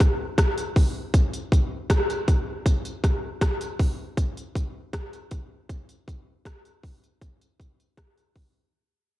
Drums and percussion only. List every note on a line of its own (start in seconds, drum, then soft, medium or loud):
0.00 kick medium
0.00 cross-stick medium
0.00 closed hi-hat medium
0.38 kick loud
0.38 cross-stick loud
0.38 closed hi-hat medium
0.58 closed hi-hat soft
0.76 kick medium
0.76 open hi-hat medium
1.14 kick loud
1.14 closed hi-hat loud
1.33 closed hi-hat medium
1.52 kick loud
1.52 closed hi-hat medium
1.90 kick loud
1.90 cross-stick loud
1.90 closed hi-hat medium
2.10 closed hi-hat soft
2.28 kick loud
2.28 closed hi-hat medium
2.66 kick loud
2.66 closed hi-hat medium
2.85 closed hi-hat soft
3.04 kick medium
3.04 cross-stick medium
3.04 closed hi-hat medium
3.41 kick loud
3.41 cross-stick loud
3.41 closed hi-hat medium
3.61 closed hi-hat soft
3.79 kick medium
3.79 open hi-hat medium
4.17 kick loud
4.17 closed hi-hat loud
4.37 closed hi-hat soft
4.55 kick loud
4.55 closed hi-hat medium
4.93 kick loud
4.93 cross-stick loud
4.93 closed hi-hat medium
5.13 closed hi-hat soft
5.31 kick medium
5.31 closed hi-hat medium
5.69 kick loud
5.69 closed hi-hat medium
5.89 closed hi-hat soft
6.08 kick medium
6.08 closed hi-hat medium
6.45 kick loud
6.45 cross-stick loud
6.45 closed hi-hat medium
6.65 closed hi-hat soft
6.83 kick loud
6.83 open hi-hat medium
7.04 closed hi-hat soft
7.21 kick loud
7.21 closed hi-hat medium
7.41 closed hi-hat medium
7.60 kick medium
7.60 closed hi-hat medium
7.80 closed hi-hat soft
7.97 kick loud
7.97 cross-stick loud
7.97 closed hi-hat medium
8.18 closed hi-hat soft
8.36 kick loud
8.36 open hi-hat medium